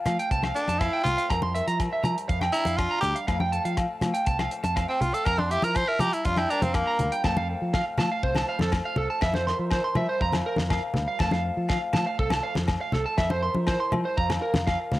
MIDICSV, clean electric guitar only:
0, 0, Header, 1, 3, 480
1, 0, Start_track
1, 0, Key_signature, -1, "major"
1, 0, Tempo, 495458
1, 1258, Time_signature, 4, 2, 24, 8
1, 14527, End_track
2, 0, Start_track
2, 0, Title_t, "Clean electric guitar"
2, 0, Program_c, 0, 27
2, 62, Note_on_c, 0, 77, 71
2, 161, Note_off_c, 0, 77, 0
2, 187, Note_on_c, 0, 79, 66
2, 282, Note_off_c, 0, 79, 0
2, 305, Note_on_c, 0, 81, 90
2, 403, Note_off_c, 0, 81, 0
2, 423, Note_on_c, 0, 77, 70
2, 520, Note_off_c, 0, 77, 0
2, 666, Note_on_c, 0, 81, 70
2, 761, Note_off_c, 0, 81, 0
2, 783, Note_on_c, 0, 77, 75
2, 882, Note_off_c, 0, 77, 0
2, 902, Note_on_c, 0, 79, 70
2, 999, Note_off_c, 0, 79, 0
2, 1141, Note_on_c, 0, 77, 68
2, 1238, Note_off_c, 0, 77, 0
2, 1256, Note_on_c, 0, 82, 94
2, 1357, Note_off_c, 0, 82, 0
2, 1383, Note_on_c, 0, 84, 73
2, 1479, Note_off_c, 0, 84, 0
2, 1497, Note_on_c, 0, 76, 72
2, 1598, Note_off_c, 0, 76, 0
2, 1624, Note_on_c, 0, 82, 76
2, 1719, Note_off_c, 0, 82, 0
2, 1866, Note_on_c, 0, 76, 67
2, 1961, Note_off_c, 0, 76, 0
2, 1975, Note_on_c, 0, 82, 75
2, 2076, Note_off_c, 0, 82, 0
2, 2218, Note_on_c, 0, 77, 90
2, 2318, Note_off_c, 0, 77, 0
2, 2341, Note_on_c, 0, 79, 68
2, 2437, Note_off_c, 0, 79, 0
2, 2454, Note_on_c, 0, 82, 85
2, 2556, Note_off_c, 0, 82, 0
2, 2576, Note_on_c, 0, 77, 64
2, 2675, Note_off_c, 0, 77, 0
2, 2818, Note_on_c, 0, 82, 72
2, 2916, Note_off_c, 0, 82, 0
2, 3057, Note_on_c, 0, 77, 74
2, 3155, Note_off_c, 0, 77, 0
2, 3173, Note_on_c, 0, 77, 86
2, 3275, Note_off_c, 0, 77, 0
2, 3299, Note_on_c, 0, 79, 74
2, 3396, Note_off_c, 0, 79, 0
2, 3415, Note_on_c, 0, 81, 77
2, 3516, Note_off_c, 0, 81, 0
2, 3538, Note_on_c, 0, 77, 73
2, 3635, Note_off_c, 0, 77, 0
2, 4009, Note_on_c, 0, 79, 70
2, 4110, Note_off_c, 0, 79, 0
2, 4133, Note_on_c, 0, 81, 92
2, 4234, Note_off_c, 0, 81, 0
2, 4256, Note_on_c, 0, 77, 70
2, 4353, Note_off_c, 0, 77, 0
2, 4500, Note_on_c, 0, 81, 73
2, 4595, Note_off_c, 0, 81, 0
2, 4612, Note_on_c, 0, 77, 81
2, 4713, Note_off_c, 0, 77, 0
2, 4738, Note_on_c, 0, 79, 72
2, 4834, Note_off_c, 0, 79, 0
2, 4980, Note_on_c, 0, 77, 69
2, 5075, Note_off_c, 0, 77, 0
2, 5099, Note_on_c, 0, 82, 94
2, 5197, Note_off_c, 0, 82, 0
2, 5219, Note_on_c, 0, 84, 76
2, 5315, Note_off_c, 0, 84, 0
2, 5340, Note_on_c, 0, 76, 73
2, 5437, Note_off_c, 0, 76, 0
2, 5459, Note_on_c, 0, 82, 77
2, 5554, Note_off_c, 0, 82, 0
2, 5699, Note_on_c, 0, 76, 71
2, 5794, Note_off_c, 0, 76, 0
2, 5812, Note_on_c, 0, 82, 77
2, 5912, Note_off_c, 0, 82, 0
2, 6179, Note_on_c, 0, 79, 71
2, 6274, Note_off_c, 0, 79, 0
2, 6299, Note_on_c, 0, 82, 86
2, 6396, Note_off_c, 0, 82, 0
2, 6424, Note_on_c, 0, 77, 70
2, 6516, Note_off_c, 0, 77, 0
2, 6658, Note_on_c, 0, 82, 78
2, 6752, Note_off_c, 0, 82, 0
2, 6897, Note_on_c, 0, 79, 71
2, 6992, Note_off_c, 0, 79, 0
2, 7022, Note_on_c, 0, 81, 96
2, 7117, Note_off_c, 0, 81, 0
2, 7142, Note_on_c, 0, 77, 75
2, 7234, Note_off_c, 0, 77, 0
2, 7503, Note_on_c, 0, 77, 79
2, 7597, Note_off_c, 0, 77, 0
2, 7740, Note_on_c, 0, 81, 81
2, 7835, Note_off_c, 0, 81, 0
2, 7863, Note_on_c, 0, 77, 76
2, 7955, Note_off_c, 0, 77, 0
2, 7978, Note_on_c, 0, 72, 84
2, 8074, Note_off_c, 0, 72, 0
2, 8102, Note_on_c, 0, 81, 75
2, 8194, Note_off_c, 0, 81, 0
2, 8223, Note_on_c, 0, 77, 83
2, 8317, Note_off_c, 0, 77, 0
2, 8343, Note_on_c, 0, 69, 68
2, 8434, Note_off_c, 0, 69, 0
2, 8578, Note_on_c, 0, 77, 76
2, 8671, Note_off_c, 0, 77, 0
2, 8695, Note_on_c, 0, 69, 74
2, 8792, Note_off_c, 0, 69, 0
2, 8817, Note_on_c, 0, 81, 79
2, 8910, Note_off_c, 0, 81, 0
2, 8932, Note_on_c, 0, 76, 98
2, 9030, Note_off_c, 0, 76, 0
2, 9057, Note_on_c, 0, 72, 74
2, 9150, Note_off_c, 0, 72, 0
2, 9175, Note_on_c, 0, 84, 84
2, 9272, Note_off_c, 0, 84, 0
2, 9417, Note_on_c, 0, 72, 79
2, 9513, Note_off_c, 0, 72, 0
2, 9535, Note_on_c, 0, 84, 84
2, 9629, Note_off_c, 0, 84, 0
2, 9652, Note_on_c, 0, 76, 78
2, 9750, Note_off_c, 0, 76, 0
2, 9775, Note_on_c, 0, 72, 73
2, 9869, Note_off_c, 0, 72, 0
2, 9899, Note_on_c, 0, 82, 101
2, 9994, Note_off_c, 0, 82, 0
2, 10135, Note_on_c, 0, 70, 82
2, 10232, Note_off_c, 0, 70, 0
2, 10379, Note_on_c, 0, 77, 84
2, 10474, Note_off_c, 0, 77, 0
2, 10731, Note_on_c, 0, 77, 77
2, 10827, Note_off_c, 0, 77, 0
2, 10853, Note_on_c, 0, 81, 101
2, 10951, Note_off_c, 0, 81, 0
2, 10968, Note_on_c, 0, 77, 75
2, 11066, Note_off_c, 0, 77, 0
2, 11328, Note_on_c, 0, 77, 79
2, 11428, Note_off_c, 0, 77, 0
2, 11570, Note_on_c, 0, 81, 83
2, 11670, Note_off_c, 0, 81, 0
2, 11692, Note_on_c, 0, 77, 71
2, 11789, Note_off_c, 0, 77, 0
2, 11810, Note_on_c, 0, 69, 86
2, 11910, Note_off_c, 0, 69, 0
2, 11935, Note_on_c, 0, 81, 78
2, 12031, Note_off_c, 0, 81, 0
2, 12045, Note_on_c, 0, 77, 82
2, 12148, Note_off_c, 0, 77, 0
2, 12412, Note_on_c, 0, 77, 74
2, 12510, Note_off_c, 0, 77, 0
2, 12527, Note_on_c, 0, 69, 75
2, 12629, Note_off_c, 0, 69, 0
2, 12649, Note_on_c, 0, 81, 74
2, 12748, Note_off_c, 0, 81, 0
2, 12765, Note_on_c, 0, 76, 88
2, 12868, Note_off_c, 0, 76, 0
2, 12888, Note_on_c, 0, 72, 72
2, 12988, Note_off_c, 0, 72, 0
2, 13005, Note_on_c, 0, 84, 79
2, 13109, Note_off_c, 0, 84, 0
2, 13249, Note_on_c, 0, 72, 78
2, 13352, Note_off_c, 0, 72, 0
2, 13370, Note_on_c, 0, 84, 79
2, 13470, Note_off_c, 0, 84, 0
2, 13613, Note_on_c, 0, 72, 72
2, 13712, Note_off_c, 0, 72, 0
2, 13731, Note_on_c, 0, 82, 96
2, 13833, Note_off_c, 0, 82, 0
2, 13969, Note_on_c, 0, 70, 80
2, 14073, Note_off_c, 0, 70, 0
2, 14209, Note_on_c, 0, 77, 81
2, 14313, Note_off_c, 0, 77, 0
2, 14527, End_track
3, 0, Start_track
3, 0, Title_t, "Muted clean electric guitar strokes"
3, 6056, Note_on_c, 9, 29, 92
3, 6153, Note_off_c, 9, 29, 0
3, 13486, Note_on_c, 9, 29, 78
3, 13583, Note_off_c, 9, 29, 0
3, 14527, End_track
0, 0, End_of_file